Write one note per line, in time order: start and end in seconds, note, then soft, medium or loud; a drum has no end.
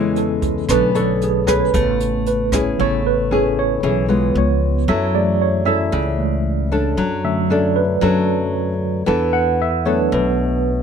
0.00 0.65 E2 loud
0.00 0.70 C#3 soft
0.00 0.66 E3 medium
0.00 0.65 G#3 medium
0.00 0.70 G#3 soft
0.00 0.70 B3 medium
0.00 0.65 C#4 medium
0.00 0.70 C#4 medium
0.00 0.65 E4 medium
0.00 0.70 E4 soft
0.00 0.70 G#4 medium
0.00 0.18 A4 medium
0.00 0.71 B4 medium
0.00 0.71 C#5 medium
0.16 0.66 A4 medium
0.16 closed hi-hat soft
0.42 kick medium
0.42 closed hi-hat soft
0.69 1.70 B1 loud
0.69 1.04 D3 soft
0.69 1.04 A3 soft
0.69 1.71 B3 medium
0.69 1.04 C#4 soft
0.69 0.91 D4 medium
0.69 0.91 A4 medium
0.69 0.95 B4 medium
0.69 0.91 C#5 medium
0.69 kick medium
0.69 cross-stick medium
0.69 closed hi-hat medium
0.95 1.43 D4 medium
0.95 1.43 A4 medium
0.95 1.21 A4 medium
0.95 1.43 C#5 medium
0.95 closed hi-hat soft
1.22 1.48 G#4 medium
1.22 closed hi-hat soft
1.47 2.48 C#4 medium
1.47 2.48 G#4 medium
1.47 1.73 B4 medium
1.47 2.48 B4 medium
1.47 kick medium
1.47 cross-stick medium
1.47 closed hi-hat soft
1.74 2.75 A1 loud
1.74 2.49 C#3 soft
1.74 2.76 A3 medium
1.74 2.49 B3 soft
1.74 kick medium
1.74 closed hi-hat medium
2.00 closed hi-hat soft
2.26 2.75 B4 medium
2.26 closed hi-hat soft
2.52 3.01 C#4 medium
2.52 3.01 E4 medium
2.52 3.01 G#4 medium
2.52 kick medium
2.52 cross-stick medium
2.52 closed hi-hat soft
2.78 3.80 A1 loud
2.78 4.31 C#3 soft
2.78 3.81 A3 medium
2.78 4.32 B3 soft
2.78 3.05 C#5 medium
3.07 3.31 B4 medium
3.31 3.79 C#4 medium
3.31 3.80 E4 medium
3.31 3.80 G#4 medium
3.31 3.58 A4 medium
3.59 3.83 C#5 medium
3.83 4.32 B1 loud
3.83 4.33 E3 medium
3.83 4.05 C#4 medium
3.83 4.05 E4 medium
3.83 4.05 G#4 medium
4.08 4.83 G#3 medium
4.08 4.84 B3 medium
4.08 4.84 F4 medium
4.35 4.84 C#2 loud
4.35 4.85 F3 soft
4.35 4.86 G#3 soft
4.35 4.86 B3 soft
4.35 4.86 C#5 medium
4.88 5.89 F#2 loud
4.88 5.90 F#3 medium
4.88 5.63 C#4 medium
4.88 5.63 E4 medium
4.88 5.63 A4 medium
4.88 5.14 E5 medium
5.14 5.89 E3 soft
5.14 5.89 A3 soft
5.14 5.89 G#4 soft
5.14 5.40 D5 medium
5.42 5.66 C#5 medium
5.65 6.66 C#4 medium
5.65 6.67 E4 medium
5.65 6.67 A4 medium
5.65 5.82 E5 medium
5.92 6.93 C#2 loud
5.92 6.95 C#3 medium
6.18 6.42 E3 soft
6.18 6.42 G#3 soft
6.18 6.42 A3 soft
6.72 7.46 C#4 medium
6.72 7.46 D4 medium
6.72 7.46 A4 medium
6.97 7.98 F#2 medium
6.97 8.00 F#3 medium
7.24 7.98 D3 soft
7.24 7.99 A3 soft
7.24 7.99 C#4 medium
7.24 7.50 E5 medium
7.50 7.84 C#4 medium
7.50 7.84 D4 medium
7.50 7.84 A4 medium
7.50 7.76 D5 medium
7.76 8.01 B4 medium
8.01 9.03 F#2 medium
8.01 9.04 F#3 medium
8.01 8.72 C#4 medium
8.01 8.72 D4 medium
8.01 8.77 A4 medium
8.01 8.72 A4 medium
9.06 10.08 E2 loud
9.06 10.09 E3 medium
9.06 9.59 B3 medium
9.06 9.59 D4 medium
9.06 9.59 A4 medium
9.33 9.58 F#5 medium
9.62 9.86 E5 medium
9.85 10.60 F#3 soft
9.85 10.60 A3 soft
9.85 10.83 B3 medium
9.85 10.83 D4 medium
9.85 10.61 D4 soft
9.85 10.83 A4 medium
9.85 10.11 C#5 medium
10.12 10.83 B1 loud
10.12 10.83 B2 medium
10.12 10.83 B4 medium